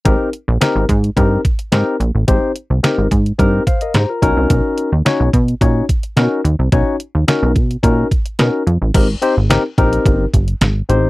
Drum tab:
CC |----------------|----------------|----------------|----------------|
HH |x-x-x-xxx-xxx-x-|x-x-x-xxx-xxx-x-|x-x-x-xxx-xxx-x-|x-x-x-xxx-xxx-x-|
SD |----o-------o---|----o-------o---|----o-------o---|----o-------o---|
BD |o-----o-o-o-----|o-----o-o-o---o-|o-----o-o-o-----|o-----o-o-o-----|

CC |x---------------|
HH |x-x-x-xxx-xxx-x-|
SD |----o-------o---|
BD |o-----o-o-o-----|